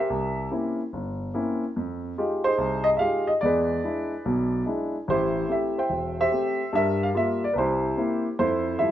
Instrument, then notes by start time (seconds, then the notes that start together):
grand piano
0.00 G4 A#4 E5
0.10 C2
0.51 A#3 C4 C#4 E4
0.93 G1
1.34 A#3 C4 C#4 E4
1.76 F2
2.18 G#3 D#4 F4 G4
2.44 D#4 G#4 C5
2.58 C2
2.84 D#5
2.97 G#3 D#4 F4 G4 E5 F5
3.27 D#5
3.41 E2 G#3 G#4 D5
3.45 B4
3.84 G#3 D4 E4
4.25 B1 B2
4.66 G#3 D4 E4
5.08 A1 E4 G4 C5
5.48 A3 C4 G4 E5
5.78 C5 E5 G5
5.90 E1
6.20 G4 C5 E5
6.31 A3 C4 G4
6.73 G2 G3 E5
6.77 A#4
7.03 F5
7.14 G3 A#3 F4 E5
7.44 D5
7.53 C2 B4
7.58 E4 G4 C5
7.97 A#3 C4 E4
8.39 F2 E4 A4 C5
8.79 F3 G3 A3 E4 E5